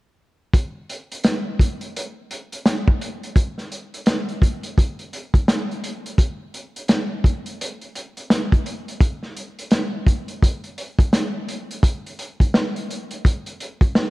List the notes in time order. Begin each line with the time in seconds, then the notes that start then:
0.54 kick, closed hi-hat
0.90 closed hi-hat
1.12 closed hi-hat
1.24 snare, closed hi-hat
1.59 kick, closed hi-hat
1.81 closed hi-hat
1.96 closed hi-hat
2.31 closed hi-hat
2.52 closed hi-hat
2.66 snare, closed hi-hat
2.88 kick
3.01 closed hi-hat
3.23 closed hi-hat
3.36 kick, closed hi-hat
3.58 snare, closed hi-hat
3.72 closed hi-hat
3.94 closed hi-hat
4.06 snare, closed hi-hat
4.29 closed hi-hat
4.42 kick, closed hi-hat
4.63 closed hi-hat
4.78 kick, closed hi-hat
4.99 closed hi-hat
5.13 closed hi-hat
5.34 kick, closed hi-hat
5.48 snare, closed hi-hat
5.71 closed hi-hat
5.84 closed hi-hat
6.06 closed hi-hat
6.18 kick, closed hi-hat
6.54 closed hi-hat
6.76 closed hi-hat
6.88 snare, closed hi-hat
7.24 kick, closed hi-hat
7.46 closed hi-hat
7.61 closed hi-hat
7.81 closed hi-hat
7.95 closed hi-hat
8.17 closed hi-hat
8.30 snare, closed hi-hat
8.52 kick, closed hi-hat
8.66 closed hi-hat
8.88 closed hi-hat
9.01 kick, closed hi-hat
9.23 snare
9.37 closed hi-hat
9.59 closed hi-hat
9.71 snare, closed hi-hat
10.07 kick, closed hi-hat
10.28 closed hi-hat
10.43 kick, closed hi-hat
10.64 closed hi-hat
10.78 closed hi-hat
10.99 kick, closed hi-hat
11.13 snare, closed hi-hat
11.48 closed hi-hat
11.71 closed hi-hat
11.83 kick, closed hi-hat
12.06 closed hi-hat
12.19 closed hi-hat
12.40 kick, closed hi-hat
12.54 snare
12.76 closed hi-hat
12.90 closed hi-hat
13.11 closed hi-hat
13.25 kick, closed hi-hat
13.46 closed hi-hat
13.60 closed hi-hat
13.81 kick, closed hi-hat
13.95 snare